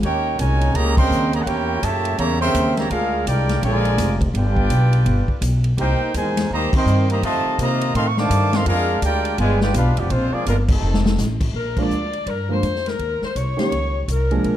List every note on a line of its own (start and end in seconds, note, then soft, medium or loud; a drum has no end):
0.03 0.37 D#2 medium
0.03 0.36 A#3 medium
0.03 0.36 C#4 medium
0.03 0.37 D#4 medium
0.03 0.37 G4 medium
0.03 0.37 A#4 medium
0.03 0.37 C#5 medium
0.03 0.37 G5 loud
0.03 kick soft
0.03 ride medium
0.39 0.73 C2 loud
0.39 0.72 A#2 medium
0.39 0.72 G#3 medium
0.39 0.72 C#4 medium
0.39 0.73 D#4 medium
0.39 0.73 A#4 medium
0.39 0.73 C#5 medium
0.39 0.73 G#5 loud
0.39 kick soft
0.39 hi-hat pedal medium
0.39 ride medium
0.61 ride medium
0.74 1.09 C#2 medium
0.74 0.97 C#3 loud
0.74 0.97 G3 medium
0.74 0.97 A#3 loud
0.74 0.98 G4 loud
0.74 0.98 C#5 loud
0.74 0.97 D#5 medium
0.74 0.97 A#5 loud
0.74 kick soft
0.74 ride medium
0.97 1.31 C#3 loud
0.97 1.31 G3 loud
0.97 1.30 C4 loud
0.97 1.31 A#4 loud
0.97 1.31 D#5 loud
0.97 1.31 G5 medium
0.97 1.31 C6 loud
0.97 kick loud
0.97 crash medium
1.10 1.45 D#2 loud
1.10 hi-hat pedal medium
1.33 1.42 C#3 medium
1.33 1.41 G3 medium
1.33 1.41 A#3 medium
1.33 1.42 G4 medium
1.33 1.42 C#5 medium
1.33 1.42 D#5 medium
1.33 1.42 A#5 loud
1.33 ride medium
1.42 1.82 A#3 medium
1.42 1.82 G4 medium
1.42 1.47 F#5 medium
1.46 1.81 E2 medium
1.46 1.82 C#4 medium
1.46 1.83 E4 medium
1.46 1.83 A#4 medium
1.46 1.83 C#5 loud
1.46 1.83 G5 loud
1.46 kick soft
1.46 ride medium
1.82 2.17 F#2 medium
1.82 2.18 A#2 medium
1.82 2.18 C#3 medium
1.82 2.18 A3 medium
1.82 2.19 G4 medium
1.82 2.18 C#5 medium
1.82 2.18 E5 loud
1.82 2.19 A5 loud
1.82 kick soft
1.82 hi-hat pedal medium
1.82 ride medium
2.05 ride medium
2.18 2.53 E2 loud
2.18 2.40 C#3 loud
2.18 2.40 G3 medium
2.18 2.40 A#3 loud
2.18 2.40 G4 medium
2.18 2.40 C#5 medium
2.18 2.40 E5 medium
2.18 2.40 A#5 loud
2.18 kick soft
2.18 ride medium
2.41 2.75 C#3 loud
2.41 2.75 G3 loud
2.41 2.74 C4 loud
2.41 2.75 A#4 medium
2.41 2.75 E5 loud
2.41 2.74 G5 loud
2.41 2.75 C6 loud
2.54 2.89 D#2 loud
2.54 kick soft
2.54 hi-hat pedal medium
2.54 ride loud
2.77 2.90 C#3 medium
2.77 2.90 G3 medium
2.77 2.90 A#3 medium
2.77 2.91 G4 medium
2.77 2.91 C#5 medium
2.77 2.91 E5 medium
2.77 2.91 A#5 loud
2.77 snare soft
2.77 ride medium
2.90 3.25 D2 loud
2.90 3.24 G#3 medium
2.90 3.24 D4 medium
2.90 3.24 F4 medium
2.90 3.24 G#4 medium
2.90 3.24 A#4 loud
2.90 3.24 F5 loud
2.90 kick soft
2.90 ride medium
3.26 3.61 C2 medium
3.26 3.62 G#3 medium
3.26 3.63 D4 medium
3.26 3.63 F4 medium
3.26 3.63 G4 medium
3.26 3.63 A#4 medium
3.26 3.63 D5 medium
3.26 3.63 G5 loud
3.26 kick soft
3.26 hi-hat pedal medium
3.26 ride medium
3.49 snare soft
3.49 ride medium
3.62 3.97 A#1 loud
3.62 4.17 D3 loud
3.62 4.17 F3 loud
3.62 4.17 G#3 loud
3.62 4.18 F4 loud
3.62 4.18 A#4 loud
3.62 4.18 D5 loud
3.62 4.18 G#5 loud
3.62 kick soft
3.62 ride medium
3.85 ride medium
3.98 4.33 F1 loud
3.98 kick soft
3.98 snare soft
3.98 hi-hat pedal medium
3.98 ride medium
4.21 kick medium
4.21 ride medium
4.34 4.69 G1 medium
4.34 5.38 B3 medium
4.34 5.38 D4 medium
4.34 5.39 F4 medium
4.34 5.38 G4 medium
4.34 5.39 B4 medium
4.34 5.39 D5 medium
4.34 5.39 G5 loud
4.34 kick soft
4.34 ride medium
4.57 kick medium
4.70 5.05 B1 loud
4.70 kick soft
4.70 hi-hat pedal medium
4.70 ride medium
4.93 ride medium
5.05 5.27 G1 loud
5.05 kick soft
5.05 ride medium
5.28 muted upright bass stroke soft
5.28 kick medium
5.41 5.76 B1 loud
5.41 kick soft
5.41 hi-hat pedal medium
5.41 ride medium
5.64 ride medium
5.77 5.99 C2 loud
5.77 6.12 A#3 medium
5.77 6.11 D#4 medium
5.77 6.13 D#4 medium
5.77 6.12 G4 medium
5.77 6.13 A#4 medium
5.77 6.13 C5 medium
5.77 6.13 G5 loud
5.77 kick soft
5.77 ride medium
6.00 muted upright bass stroke soft
6.14 6.49 E2 medium
6.14 6.48 A#2 medium
6.14 6.48 D#3 medium
6.14 6.48 G#3 medium
6.14 6.49 D#4 medium
6.14 6.48 A#4 medium
6.14 6.49 C5 medium
6.14 6.49 G#5 loud
6.14 kick soft
6.14 hi-hat pedal medium
6.14 ride medium
6.37 snare medium
6.37 ride loud
6.50 6.71 D#2 medium
6.50 6.72 D#3 medium
6.50 6.72 G3 medium
6.50 6.72 A#3 medium
6.50 6.73 G4 medium
6.50 6.73 C5 loud
6.50 6.73 D#5 medium
6.50 6.73 A#5 loud
6.50 kick soft
6.73 7.07 D#3 loud
6.73 7.07 G3 loud
6.73 7.06 C4 loud
6.73 7.08 A#4 medium
6.73 7.08 D#5 loud
6.73 7.08 G5 medium
6.73 7.08 C6 loud
6.73 muted upright bass stroke soft
6.73 kick loud
6.73 crash medium
6.86 7.21 G2 loud
6.86 hi-hat pedal medium
7.10 7.22 D#3 medium
7.10 7.22 G3 medium
7.10 7.22 A#3 medium
7.10 7.23 G4 medium
7.10 7.23 C5 medium
7.10 7.23 D#5 medium
7.10 7.23 A#5 loud
7.10 ride medium
7.22 7.43 F2 loud
7.22 7.56 C3 medium
7.22 7.57 D#3 medium
7.22 7.57 A3 medium
7.22 7.57 F4 loud
7.22 7.57 C5 loud
7.22 7.57 D#5 loud
7.22 7.57 A5 loud
7.22 kick soft
7.22 ride medium
7.44 muted upright bass stroke soft
7.58 7.93 C3 medium
7.58 7.93 C3 loud
7.58 7.92 D#3 medium
7.58 7.92 A#3 medium
7.58 7.93 F4 medium
7.58 7.93 C5 medium
7.58 7.93 D#5 loud
7.58 7.93 A#5 loud
7.58 kick soft
7.58 hi-hat pedal medium
7.58 ride medium
7.81 ride medium
7.94 8.29 A2 loud
7.94 8.07 D#3 loud
7.94 8.07 A3 loud
7.94 8.07 C4 loud
7.94 8.08 A4 loud
7.94 8.08 D#5 medium
7.94 8.08 F5 loud
7.94 8.08 C6 loud
7.94 kick soft
7.94 ride medium
8.08 8.17 C#6 medium
8.17 8.53 D#3 loud
8.17 8.53 A3 loud
8.17 8.53 D4 loud
8.17 8.54 C5 loud
8.17 8.54 F5 loud
8.17 8.54 A5 loud
8.17 8.54 D6 loud
8.17 snare medium
8.30 8.65 G2 loud
8.30 kick soft
8.30 hi-hat pedal medium
8.30 ride loud
8.53 8.67 D#3 medium
8.53 8.67 A3 medium
8.53 8.67 C4 medium
8.53 8.68 A4 medium
8.53 8.68 D#5 medium
8.53 8.67 F5 medium
8.53 8.68 C6 loud
8.53 snare medium
8.53 ride medium
8.66 9.01 F2 loud
8.66 9.00 G#3 medium
8.66 9.00 D4 medium
8.66 9.01 D4 loud
8.66 9.00 F4 loud
8.66 9.01 G#4 loud
8.66 9.01 A#4 loud
8.66 9.01 F5 loud
8.66 kick soft
8.66 ride medium
9.02 9.37 D2 medium
9.02 9.36 G#3 medium
9.02 9.36 D4 medium
9.02 9.37 F4 medium
9.02 9.36 G4 medium
9.02 9.37 A#4 loud
9.02 9.37 D5 medium
9.02 9.37 G5 loud
9.02 kick soft
9.02 hi-hat pedal medium
9.02 ride medium
9.25 ride medium
9.38 9.73 G1 loud
9.38 9.60 G#3 loud
9.38 9.60 F4 loud
9.38 9.60 B4 medium
9.38 9.60 D5 medium
9.38 9.60 G#5 loud
9.38 kick soft
9.38 ride medium
9.61 9.74 B3 medium
9.61 9.74 D4 medium
9.61 9.74 F4 medium
9.61 9.74 G4 medium
9.61 9.74 B4 medium
9.61 9.74 D5 medium
9.61 9.74 G5 loud
9.61 snare medium
9.74 9.88 B1 loud
9.74 9.96 B3 medium
9.74 9.95 D4 medium
9.74 9.96 D4 medium
9.74 9.95 F4 medium
9.74 9.96 G4 medium
9.74 9.96 B4 medium
9.74 9.96 F5 loud
9.74 kick soft
9.74 hi-hat pedal medium
9.74 ride medium
9.87 9.97 G1 medium
9.97 10.09 F1 medium
9.97 10.11 F3 medium
9.97 10.11 B3 medium
9.97 10.11 D4 medium
9.97 10.10 F4 medium
9.97 10.11 G4 medium
9.97 10.11 D5 medium
9.97 ride medium
10.10 10.31 A#1 loud
10.10 10.33 G#3 medium
10.10 10.34 C4 medium
10.10 10.33 D4 medium
10.10 10.32 F4 medium
10.10 10.33 C5 loud
10.10 kick soft
10.10 ride medium
10.33 10.46 F3 medium
10.33 10.47 G#3 medium
10.33 10.46 A#3 medium
10.33 10.47 D4 medium
10.33 10.46 F4 medium
10.33 10.46 G#4 medium
10.33 10.46 D5 medium
10.33 muted upright bass stroke soft
10.46 10.81 G1 medium
10.46 10.57 D3 medium
10.46 10.57 F3 medium
10.46 10.57 G#3 medium
10.46 10.57 A#3 medium
10.46 10.57 D4 medium
10.46 10.57 F4 medium
10.46 10.57 A#4 medium
10.46 kick soft
10.46 hi-hat pedal medium
10.46 ride medium
10.68 11.16 C3 medium
10.68 11.15 D#3 medium
10.68 11.16 A3 medium
10.68 11.16 C4 medium
10.68 11.16 D#4 medium
10.68 11.16 A4 medium
10.68 kick loud
10.68 crash loud
10.82 11.17 F1 loud
10.94 snare medium
11.06 snare loud
11.18 11.53 A1 loud
11.18 snare medium
11.18 hi-hat pedal medium
11.41 kick medium
11.41 crash medium
11.54 11.89 A#1 medium
11.54 11.77 A#4 medium
11.54 kick soft
11.77 11.89 D3 medium
11.77 11.90 F3 medium
11.77 11.90 G#3 medium
11.77 11.90 A#3 medium
11.77 11.90 F4 medium
11.77 12.28 D5 loud
11.77 kick medium
11.77 crash medium
11.89 12.25 D2 medium
11.89 hi-hat pedal medium
12.13 ride soft
12.26 12.61 G2 medium
12.26 12.50 A#4 medium
12.26 kick soft
12.26 ride medium
12.49 12.61 D3 medium
12.49 12.61 F3 medium
12.49 12.61 G#3 soft
12.49 12.62 A#3 soft
12.49 12.61 F4 medium
12.49 12.87 C5 medium
12.62 12.98 F2 medium
12.62 kick soft
12.62 hi-hat pedal medium
12.62 ride medium
12.76 snare soft
12.86 13.23 A#4 medium
12.86 snare soft
12.86 ride soft
12.99 13.20 D#2 medium
12.99 kick soft
12.99 ride medium
13.22 13.36 C5 medium
13.22 muted upright bass stroke soft
13.22 snare soft
13.35 13.56 C2 medium
13.35 13.58 C#5 medium
13.35 kick soft
13.35 hi-hat pedal medium
13.35 ride medium
13.57 13.70 D#3 medium
13.57 13.70 G3 medium
13.57 13.70 A#3 medium
13.57 13.70 C#4 medium
13.57 13.70 G4 medium
13.57 14.05 C#5 loud
13.57 muted upright bass stroke soft
13.57 snare medium
13.57 ride soft
13.71 14.07 C#2 medium
13.71 kick soft
13.71 ride medium
14.08 14.43 C2 medium
14.08 kick soft
14.08 hi-hat pedal medium
14.08 ride medium
14.13 14.57 A#4 medium
14.31 14.57 F3 medium
14.31 14.57 G#3 medium
14.31 14.57 A#3 medium
14.31 14.57 D4 medium
14.31 14.57 G#4 medium
14.31 ride soft
14.44 14.57 A#1 medium
14.44 kick soft
14.44 ride medium